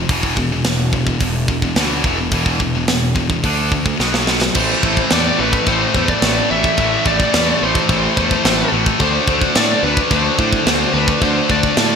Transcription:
0.09 picked electric bass E1, distorted electric guitar E2 B2 E3, kick, open hi-hat
0.23 kick
0.37 picked electric bass E1, distorted electric guitar E2 B2, kick
0.52 distorted electric guitar E2 B2
0.64 picked electric bass E1, distorted electric guitar E2 B2, snare, open hi-hat
0.93 distorted electric guitar E2 B2, kick
1.07 distorted electric guitar E2 B2, kick
1.20 picked electric bass E1, distorted electric guitar E2 B2, kick, open hi-hat
1.48 picked electric bass E1, distorted electric guitar E2 B2, kick
1.62 distorted electric guitar E2 B2, kick
1.76 picked electric bass D2, distorted electric guitar E2 B2 E3, snare, open hi-hat
2.04 picked electric bass E1, distorted electric guitar E2 B2 E3, kick
2.19 distorted electric guitar E2 B2
2.31 picked electric bass E1, distorted electric guitar E2 B2 E3, kick, open hi-hat
2.46 kick
2.60 picked electric bass E1, distorted electric guitar E2 B2, kick
2.75 distorted electric guitar E2 B2
2.88 picked electric bass E1, distorted electric guitar E2 B2, snare, open hi-hat
3.15 distorted electric guitar E2 B2, kick
3.30 distorted electric guitar E2 B2, kick
3.44 picked electric bass D2, distorted electric guitar D3 A3 D4, kick, open hi-hat
3.72 distorted electric guitar D3 A3, kick
3.86 distorted electric guitar D3 A3, kick
3.99 picked electric bass B1, distorted electric guitar B2 F#3 B3, snare
4.14 snare
4.27 distorted electric guitar B2 F#3 B3, snare
4.42 distorted electric guitar B2 F#3, snare
4.55 picked electric bass A1, distorted electric guitar A2 E3 A3, lead electric guitar C5, kick, crash, china
4.83 picked electric bass A1, distorted electric guitar A2 E3 A3, kick
4.97 kick
5.10 picked electric bass E2, distorted electric guitar A2 E3 A3, lead electric guitar D5, snare, china
5.39 picked electric bass A1, distorted electric guitar A2 E3 A3, lead electric guitar B4
5.53 kick
5.66 picked electric bass A1, distorted electric guitar A2 E3 A3, lead electric guitar C5, kick, china
5.94 picked electric bass E2, distorted electric guitar A2 E3 A3, kick
6.08 lead electric guitar D5, kick
6.22 picked electric bass A1, distorted electric guitar A2 E3 A3, snare, china
6.50 picked electric bass A1, distorted electric guitar A2 E3 A3, lead electric guitar E5
6.64 kick
6.77 picked electric bass A1, distorted electric guitar A2 E3 A3, kick, china
7.05 picked electric bass A1, distorted electric guitar A2 E3 A3, lead electric guitar D5, kick
7.20 kick
7.33 picked electric bass E2, distorted electric guitar A2 E3 A3, snare, china
7.60 picked electric bass A1, distorted electric guitar A2 E3 A3, lead electric guitar C5
7.75 kick
7.89 picked electric bass A1, distorted electric guitar A2 E3 A3, kick, china
8.17 picked electric bass E2, distorted electric guitar A2 E3 A3, kick
8.31 kick
8.44 picked electric bass A1, distorted electric guitar A2 E3 A3, snare, china
8.72 picked electric bass A1, distorted electric guitar A2 E3 A3
8.86 kick
9.00 picked electric bass D2, distorted electric guitar D3 A3 D4, lead electric guitar C5, kick, china
9.27 picked electric bass D2, distorted electric guitar D3 A3 D4, kick
9.41 kick
9.55 picked electric bass A2, distorted electric guitar D3 A3 D4, lead electric guitar D5, snare, china
9.83 picked electric bass D2, distorted electric guitar D3 A3 D4, lead electric guitar B4
9.97 kick
10.11 picked electric bass D2, distorted electric guitar D3 A3 D4, lead electric guitar C5, kick, china
10.39 picked electric bass A2, distorted electric guitar D3 A3 D4, kick
10.53 kick
10.66 picked electric bass D2, distorted electric guitar D3 A3 D4, snare, china
10.94 picked electric bass D2, distorted electric guitar D3 A3 D4, lead electric guitar B4
11.08 kick
11.21 picked electric bass D2, distorted electric guitar D3 A3 D4, lead electric guitar C5, kick, china
11.50 picked electric bass D2, distorted electric guitar D3 A3 D4, lead electric guitar D5, kick
11.63 kick
11.77 picked electric bass A2, distorted electric guitar D3 A3 D4, snare, china

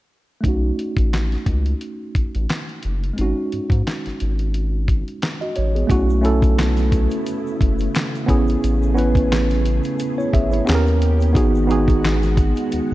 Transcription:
0.41 tine electric piano A3 C#4, kick
0.45 analog synth bass B1, tine electric piano D#4 F#4, closed hi-hat
0.79 closed hi-hat
0.97 analog synth bass A1, kick, closed hi-hat
1.13 snare, clap, closed hi-hat
1.32 snare, closed hi-hat
1.46 analog synth bass C#2, kick, closed hi-hat
1.66 closed hi-hat
1.81 closed hi-hat
2.15 analog synth bass A1, kick, closed hi-hat
2.35 analog synth bass A1, closed hi-hat
2.49 snare, clap, closed hi-hat
2.69 closed hi-hat
2.83 analog synth bass F#1, closed hi-hat
3.04 closed hi-hat
3.13 tine electric piano G#3 C4
3.18 analog synth bass G#1, tine electric piano D#4 F#4, closed hi-hat
3.23 tine electric piano C#4
3.52 analog synth bass G#2, closed hi-hat
3.70 analog synth bass G#2, kick, closed hi-hat
3.87 snare, clap, closed hi-hat
4.06 analog synth bass G#1, snare, closed hi-hat
4.20 analog synth bass G#1, closed hi-hat
4.39 closed hi-hat
4.54 closed hi-hat
4.88 kick, closed hi-hat
5.08 closed hi-hat
5.22 snare, clap, closed hi-hat
5.41 tine electric piano F#4 D#5, closed hi-hat
5.56 analog synth bass A1, tine electric piano C#5, closed hi-hat
5.75 tine electric piano B3 G#4, closed hi-hat
5.87 analog synth bass B1, string machine C#3 A3 B3 E4, tine electric piano A3 C#4 E4 F#4, kick, closed hi-hat, shaker
6.10 shaker
6.21 tine electric piano A3 C#4 E4, closed hi-hat, shaker
6.25 tine electric piano A4
6.42 kick, closed hi-hat, shaker
6.59 finger snap, snare, clap, closed hi-hat, shaker
6.77 snare, closed hi-hat, shaker
6.92 kick, closed hi-hat, shaker
7.10 closed hi-hat, shaker
7.26 closed hi-hat, shaker
7.47 shaker
7.61 analog synth bass F#1, kick, closed hi-hat
7.79 closed hi-hat, shaker
7.95 finger snap, snare, clap, closed hi-hat, shaker
8.15 closed hi-hat, shaker
8.26 analog synth bass A1, string machine A3 B3 G#4, tine electric piano B3 C#4 E4 G#4, kick, closed hi-hat, shaker
8.48 closed hi-hat, shaker
8.64 analog synth bass A1, closed hi-hat, shaker
8.83 shaker
8.94 tine electric piano B3 C#4 E4 B4, shaker
8.98 closed hi-hat
9.15 kick, closed hi-hat, shaker
9.32 finger snap, snare, clap, closed hi-hat, shaker
9.50 snare, closed hi-hat, shaker
9.66 closed hi-hat, shaker
9.84 closed hi-hat, shaker
9.99 closed hi-hat, shaker
10.18 tine electric piano E4 C#5, shaker
10.33 analog synth bass G#1, tine electric piano G#4 E5, kick, closed hi-hat
10.52 tine electric piano E4 C#5, closed hi-hat, shaker
10.65 string machine D#3 C#4 G4, tine electric piano B3 C#4 G4 G#4, finger snap, closed hi-hat, shaker
10.69 analog synth bass D#2, snare, clap
10.75 tine electric piano A#4
10.87 closed hi-hat, shaker
11.01 closed hi-hat, shaker
11.21 closed hi-hat, shaker
11.33 analog synth bass G#1, string machine G#3 F#4, tine electric piano B3 D#4 F#4 G#4, kick, closed hi-hat, shaker
11.55 shaker
11.67 tine electric piano B3 D#4 F#4, closed hi-hat, shaker
11.71 tine electric piano G#4
11.88 kick, closed hi-hat, shaker
12.05 finger snap, snare, clap, closed hi-hat, shaker
12.22 snare, closed hi-hat, shaker
12.37 kick, closed hi-hat, shaker
12.56 closed hi-hat, shaker
12.72 analog synth bass D#2, closed hi-hat, shaker

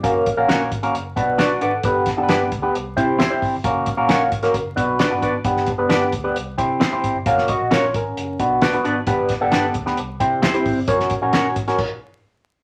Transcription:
0.03 tine electric piano A#3 C#4 F#4 A#4, kick, closed hi-hat
0.26 kick, closed hi-hat
0.37 fingered electric bass A#1, tine electric piano A#3 C#4 F#4 A#4
0.48 fingered electric bass A#1, clean electric guitar C#4 F#4 A#4 C#5, snare, closed hi-hat
0.72 fingered electric bass G#1, kick, closed hi-hat
0.83 tine electric piano A#3 C#4 F#4 A#4, closed hi-hat
0.94 fingered electric bass F#1, closed hi-hat
1.16 fingered electric bass B1, tine electric piano B3 D4 F#4 B4, kick, closed hi-hat
1.38 clean electric guitar D4 F#4 B4 D5, tine electric piano F#4 D5, snare, closed hi-hat
1.61 fingered electric bass G#1, clean electric guitar D4 F#4 B4 D5, tine electric piano A4 F#5, closed hi-hat
1.83 fingered electric bass G1, tine electric piano B3 D4 G4 B4, kick, closed hi-hat
2.06 kick, snare, closed hi-hat
2.17 fingered electric bass F#1, tine electric piano B3 D4 G4 A4
2.23 tine electric piano B4
2.29 fingered electric bass G1, clean electric guitar D4 G4 B4 D5, snare, closed hi-hat
2.52 fingered electric bass D2, kick, closed hi-hat
2.62 tine electric piano B3 D4 G4 B4
2.75 fingered electric bass C2, closed hi-hat
2.96 fingered electric bass C3, tine electric piano C4 E4 G4 C5, kick, closed hi-hat
3.19 fingered electric bass E2, clean electric guitar C4 E4 G4 C5, snare, closed hi-hat
3.30 tine electric piano C4 E4 G4 C5
3.42 fingered electric bass G#1, kick, open hi-hat
3.53 fingered electric bass G1
3.64 fingered electric bass F#1, tine electric piano A#3 C#4 F#4 A#4, kick, closed hi-hat
3.86 kick, closed hi-hat
3.97 fingered electric bass A#1, tine electric piano A#3 C#4 F#4 A#4
4.09 fingered electric bass A#1, clean electric guitar C#4 F#4 A#4 C#5, snare, closed hi-hat
4.32 fingered electric bass G#1, kick, closed hi-hat
4.42 tine electric piano A#3 C#4 F#4 A#4, snare, closed hi-hat
4.54 fingered electric bass F#1, kick, closed hi-hat
4.76 fingered electric bass B1, tine electric piano B3 D4 F#4 B4, kick, closed hi-hat
4.99 clean electric guitar D4 F#4 B4 D5, snare, closed hi-hat
5.10 fingered electric bass G1, tine electric piano B3 D4 F#4 B4
5.22 fingered electric bass G#1, clean electric guitar D4 F#4 B4 D5, kick, closed hi-hat
5.44 fingered electric bass G1, tine electric piano B3 D4 G4 B4, kick, closed hi-hat
5.57 snare
5.67 kick, closed hi-hat
5.78 fingered electric bass F#1, tine electric piano B3 D4 G4 B4
5.89 fingered electric bass G1, clean electric guitar D4 G4 B4 D5, snare, closed hi-hat
6.12 fingered electric bass D2, kick, closed hi-hat
6.24 tine electric piano B3 D4 G4 B4
6.36 fingered electric bass C2, closed hi-hat
6.58 fingered electric bass C3, tine electric piano C4 E4 G4 C5, kick, closed hi-hat
6.80 fingered electric bass E2, clean electric guitar C4 E4 G4 C5, snare, closed hi-hat
6.92 tine electric piano C4 E4 G4 C5
7.04 fingered electric bass G#1, kick, closed hi-hat
7.15 fingered electric bass G1
7.26 fingered electric bass F#1, tine electric piano A#3 C#4 F#4 A#4, kick, closed hi-hat
7.38 snare
7.48 tine electric piano F#4 D#5, kick, closed hi-hat
7.60 fingered electric bass A#1
7.71 fingered electric bass A#1, clean electric guitar C#4 F#4 A#4 C#5, tine electric piano F4 C#5, snare, closed hi-hat
7.94 fingered electric bass G#1, tine electric piano C#4 A#4, kick, closed hi-hat
8.17 fingered electric bass F#1, closed hi-hat
8.39 fingered electric bass B1, tine electric piano B3 D4 F#4 B4, kick, closed hi-hat
8.62 clean electric guitar D4 F#4 B4 D5, snare, closed hi-hat
8.73 tine electric piano B3 D4 F#4 B4, closed hi-hat
8.85 fingered electric bass G#1, clean electric guitar D4 F#4 B4 D5, closed hi-hat
9.07 fingered electric bass G1, tine electric piano B3 D4 G4 B4, kick, closed hi-hat
9.29 kick, snare, closed hi-hat
9.41 fingered electric bass F#1, tine electric piano B3 D4 G4 A4
9.52 fingered electric bass G1, clean electric guitar D4 G4 B4 D5, snare, closed hi-hat
9.74 fingered electric bass D2, kick, closed hi-hat
9.86 tine electric piano B3 D4 G4 B4, snare
9.97 fingered electric bass C2, closed hi-hat
10.20 fingered electric bass C3, tine electric piano C4 E4 G4 C5, kick, closed hi-hat
10.42 fingered electric bass E2, clean electric guitar C4 E4 G4 C5, snare, closed hi-hat
10.54 tine electric piano C4 E4 G4 C5, closed hi-hat
10.66 fingered electric bass G#1, kick, open hi-hat
10.88 fingered electric bass F#1, tine electric piano C#4 F#4 A#4 C#5, kick, closed hi-hat
11.00 snare
11.10 kick, closed hi-hat
11.22 fingered electric bass A#1, tine electric piano C#4 F#4 A#4 C#5
11.33 fingered electric bass A#1, clean electric guitar C#4 F#4 A#4 C#5, snare, closed hi-hat
11.56 fingered electric bass G#1, kick, closed hi-hat
11.67 tine electric piano C#4 F#4 A#4 C#5, snare, closed hi-hat
11.78 kick, crash

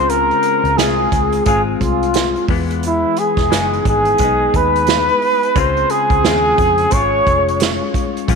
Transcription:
Already playing: picked electric bass C#2, clean electric guitar C#3 G#3 C4 F4, trumpet C5
0.09 trumpet A#4, closed hi-hat
0.31 closed hi-hat
0.43 closed hi-hat
0.64 picked electric bass C#2, closed hi-hat
0.78 picked electric bass C2, clean electric guitar G#3 C4 F4, trumpet G#4, snare, closed hi-hat
1.12 picked electric bass C#2, kick, closed hi-hat
1.32 closed hi-hat
1.46 picked electric bass G#1, clean electric guitar G#3 C4 F4, trumpet G#4, kick, closed hi-hat
1.80 picked electric bass C2, trumpet F4, kick, closed hi-hat
2.03 closed hi-hat
2.14 snare, closed hi-hat
2.36 closed hi-hat
2.48 picked electric bass E2, clean electric guitar E3 G#3 B3, kick, open hi-hat
2.71 closed hi-hat
2.83 trumpet E4, closed hi-hat
3.16 trumpet G#4, closed hi-hat
3.37 picked electric bass E1, kick, snare, closed hi-hat
3.50 picked electric bass F#1, clean electric guitar E3 G#3 B3 D#4, snare, closed hi-hat
3.73 closed hi-hat
3.85 picked electric bass G#1, trumpet G#4, kick, closed hi-hat
4.05 closed hi-hat
4.18 picked electric bass B1, clean electric guitar G#3 B3, kick, closed hi-hat
4.24 clean electric guitar D#4
4.54 picked electric bass D#2, trumpet B4, kick, closed hi-hat
4.76 closed hi-hat
4.87 snare, closed hi-hat
5.09 closed hi-hat
5.22 open hi-hat
5.43 closed hi-hat
5.55 picked electric bass C#2, clean electric guitar C#3 G#3 C4 F4, trumpet C5, kick, closed hi-hat
5.77 closed hi-hat
5.90 trumpet G#4, closed hi-hat
6.10 picked electric bass C#2, kick, closed hi-hat
6.24 picked electric bass D#2, clean electric guitar C#3 G#3 C4 F4, snare, closed hi-hat
6.58 picked electric bass F2, kick, closed hi-hat
6.78 closed hi-hat
6.90 picked electric bass G#1, clean electric guitar C#3 G#3, trumpet C#5, kick, closed hi-hat
6.97 clean electric guitar F4
7.27 picked electric bass F1, kick, closed hi-hat
7.48 closed hi-hat
7.60 snare, closed hi-hat
7.94 kick, closed hi-hat
8.17 closed hi-hat
8.28 picked electric bass A#1, clean electric guitar A#2 F3 G#3 C#4 F4, kick, closed hi-hat

